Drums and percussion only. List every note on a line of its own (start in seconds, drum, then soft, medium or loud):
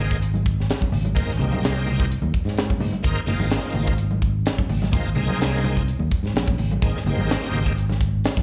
0.11 kick medium
0.11 closed hi-hat soft
0.22 closed hi-hat medium
0.34 closed hi-hat soft
0.34 high conga medium
0.46 kick medium
0.46 closed hi-hat medium
0.60 snare soft
0.70 snare medium
0.70 closed hi-hat medium
0.81 kick medium
0.81 closed hi-hat soft
0.81 high conga medium
0.92 open hi-hat medium
0.92 low conga medium
1.05 closed hi-hat soft
1.05 high conga medium
1.17 kick medium
1.17 closed hi-hat medium
1.31 snare soft
1.39 closed hi-hat medium
1.39 low conga medium
1.52 closed hi-hat soft
1.52 high conga medium
1.64 snare loud
1.64 closed hi-hat medium
1.77 closed hi-hat soft
1.87 closed hi-hat medium
1.87 low conga medium
2.00 kick medium
2.12 closed hi-hat medium
2.22 high conga medium
2.34 kick medium
2.34 closed hi-hat medium
2.47 snare soft
2.47 closed hi-hat soft
2.57 snare loud
2.57 closed hi-hat medium
2.69 kick medium
2.69 high conga medium
2.80 open hi-hat medium
2.80 low conga medium
2.93 closed hi-hat soft
2.93 high conga medium
3.04 kick medium
3.04 closed hi-hat medium
3.27 closed hi-hat soft
3.27 low conga medium
3.40 closed hi-hat soft
3.40 high conga medium
3.50 snare loud
3.50 closed hi-hat medium
3.64 snare soft
3.74 closed hi-hat medium
3.74 low conga medium
3.87 kick medium
3.87 closed hi-hat soft
3.98 closed hi-hat medium
4.11 closed hi-hat soft
4.11 high conga medium
4.22 kick medium
4.22 closed hi-hat medium
4.46 snare loud
4.46 closed hi-hat medium
4.58 kick medium
4.58 closed hi-hat soft
4.58 high conga medium
4.69 open hi-hat medium
4.69 low conga medium
4.82 snare soft
4.82 closed hi-hat soft
4.82 high conga medium
4.92 kick loud
4.92 closed hi-hat medium
4.92 low conga medium
5.16 closed hi-hat medium
5.16 low conga medium
5.29 closed hi-hat soft
5.29 high conga medium
5.41 snare loud
5.41 closed hi-hat medium
5.54 snare soft
5.54 closed hi-hat soft
5.64 closed hi-hat medium
5.64 high conga medium
5.64 low conga medium
5.77 kick medium
5.88 closed hi-hat medium
5.99 high conga medium
6.12 kick medium
6.12 closed hi-hat medium
6.25 snare soft
6.25 closed hi-hat soft
6.36 snare loud
6.36 closed hi-hat medium
6.47 kick medium
6.47 high conga medium
6.58 open hi-hat medium
6.58 low conga medium
6.71 closed hi-hat soft
6.71 high conga medium
6.82 kick loud
6.82 closed hi-hat medium
6.97 snare soft
7.06 closed hi-hat medium
7.06 low conga medium
7.18 closed hi-hat soft
7.18 high conga medium
7.30 snare loud
7.30 closed hi-hat medium
7.44 snare soft
7.53 closed hi-hat medium
7.53 low conga medium
7.66 kick medium
7.66 closed hi-hat soft
7.77 closed hi-hat medium
7.89 snare soft
7.89 closed hi-hat soft
7.89 high conga medium
8.01 kick medium
8.01 closed hi-hat medium
8.24 snare loud
8.24 closed hi-hat medium
8.37 kick medium
8.37 closed hi-hat soft
8.37 high conga medium